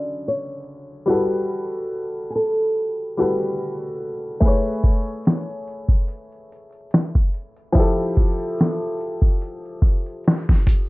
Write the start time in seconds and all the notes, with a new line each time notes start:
Already playing: C#3 D3 F#4 D5 E5
0.28 C#5
1.06 G3 F#4
1.10 A4 B4
2.30 G#4
2.36 A4
3.17 G3 F#4 A4
3.21 B4
4.40 A3 G#4, kick, closed hi-hat
4.45 B4 C#5
4.83 kick, closed hi-hat
5.07 closed hi-hat
5.25 snare, closed hi-hat
5.50 closed hi-hat
5.68 closed hi-hat
5.89 kick, closed hi-hat
6.08 closed hi-hat
6.32 closed hi-hat
6.52 closed hi-hat
6.72 closed hi-hat
6.91 snare, closed hi-hat
7.15 kick, closed hi-hat
7.34 closed hi-hat
7.57 closed hi-hat
7.73 F3 E4, kick, closed hi-hat
7.77 G4 A4
7.98 closed hi-hat
8.16 kick, closed hi-hat
8.40 closed hi-hat
8.59 snare, closed hi-hat
8.83 closed hi-hat
9.01 closed hi-hat
9.22 kick, closed hi-hat
9.42 closed hi-hat
9.65 closed hi-hat
9.82 kick, closed hi-hat
10.06 closed hi-hat
10.24 snare, closed hi-hat
10.49 kick, snare, closed hi-hat
10.67 kick, closed hi-hat